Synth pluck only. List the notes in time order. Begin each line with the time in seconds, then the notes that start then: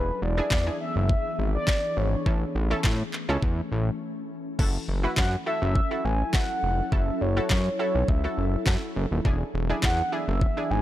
Already playing: D4 E4 G#4
0.37 D4 E4 G#4
0.66 D4 E4 G#4
2.26 C#4 E4 A4
2.71 C#4 E4 A4
3.29 C#4 E4 A4
4.59 E4 F#4 A4
5.03 E4 F#4 B4
5.46 E4 F#4 A4
5.91 E4 F#4 A4
6.34 E4 F#4 A4
6.92 E4 F#4 A4
7.37 E4 F#4 A4
7.79 E4 F#4 A4
8.24 E4 F#4 A4
8.67 E4 F#4 A4
9.25 D4 E4 G#4
9.69 D4 E4 G#4
10.12 D4 E4 G#4
10.57 D4 E4 G#4